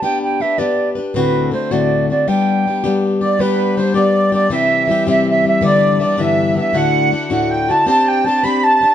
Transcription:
X:1
M:6/8
L:1/16
Q:3/8=107
K:G
V:1 name="Accordion"
z12 | z12 | z8 z2 d2 | B4 c2 d4 d2 |
e6 e2 e2 e2 | d3- d/2 e/2 d2 e4 e2 | f6 f2 g2 a2 | a2 g2 a2 b2 a4 |]
V:2 name="Flute"
g2 g2 e2 d4 z2 | B4 c2 d4 d2 | g8 z2 d2 | B3- B/2 B/2 c2 d4 d2 |
e6 e2 e2 e2 | d4 d2 e4 e2 | f6 f2 g2 a2 | a2 g2 a2 b2 a4 |]
V:3 name="Steel-string acoustic guitar"
[B,DGB]4 [B,DGB]2 [B,DGB]4 [DGB]2 | [D,,A,,D,A,CF]4 [D,A,CF]2 [D,,A,,D,A,CF]4 [D,A,CF]2 | [G,B,DG]4 [G,B,DG]2 [G,B,DG]4 [B,DG]2 | [G,B,DG]4 [G,B,DG]2 [G,B,DG]4 [B,DG]2 |
[C,E,G,CG]4 [E,G,CG]2 [C,E,G,CG]4 [G,CG]2 | [G,,D,E,G,B,D]4 [E,G,B,D]2 [G,,D,E,G,B,D]4 [E,G,B,D]2 | [D,,A,,D,DEF]4 [D,DEF]2 [D,,A,,D,DEF]4 [D,DEF]2 | [CDGc]4 [CDGc]2 [CDGc]4 [DGc]2 |]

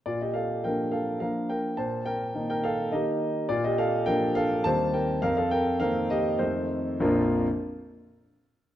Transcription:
X:1
M:3/4
L:1/16
Q:1/4=104
K:Bb
V:1 name="Grand piano"
[Fd] [Ge] [Af]2 [Bg]2 [Af]2 [Bf]2 [Bg]2 | [ca]2 [Bg]3 [Bg] [Af]2 [Ge]4 | [Fd] [Ge] [Af]2 [Bg]2 [Af]2 [ca]2 [Bg]2 | [Bf] [Af] [Bg]2 [Bf]2 [Ge]2 [Ec]4 |
[B,,,F,,F,B,DFB]2 z8 z2 |]
V:2 name="Grand piano" clef=bass
B,,4 [F,B,D]4 [F,B,D]4 | B,,4 [E,B,E]4 [E,B,E]4 | B,,4 [F,B,D]4 [E,,E,G,C]4 | F,,4 [E,B,C]4 [F,,E,A,C]4 |
z12 |]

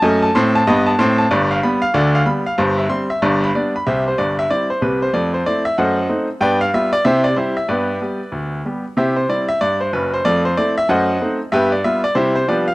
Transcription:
X:1
M:4/4
L:1/8
Q:"Swing" 1/4=188
K:C
V:1 name="Grand piano"
^d a c' a d a c' a | d f b f d f b f | c e c' e d b d b | [Gce] c d e d c B c |
d c d e [c^d^f]3 z | [Bdg] f e d [Gce] d [EGc] e | [GBd]6 z2 | [Gce] c d e d c B c |
d c d e [c^d^f]3 z | [GBe] d e d [EGc] c [GBd] f |]
V:2 name="Grand piano" clef=bass
[^F,,A,]2 [A,,C]2 [G,,B,]2 [A,,C]2 | [G,,,G,,]2 [G,B,]2 [D,,D,]2 [G,B,]2 | [G,,,G,,]2 [G,C]2 [G,,,G,,]2 [G,B,D]2 | [C,,C,]2 [G,,,G,,]2 [G,CE]2 [C,,C,]2 |
[F,,A,]2 [A,CE]2 [^F,,A,]2 [A,C^D]2 | [G,,B,]2 [G,B,F]2 [C,E]2 [G,C]2 | [G,,B,]2 [G,B,G]2 D,,2 [G,B,G]2 | [C,E]2 [G,CE]2 G,,2 [^F,,,^F,,]2 |
[F,,A,]2 [A,CE]2 [^F,,A,]2 [A,C^D]2 | [G,,B,]2 [G,B,F]2 [C,G,C]2 [F,G,B,D]2 |]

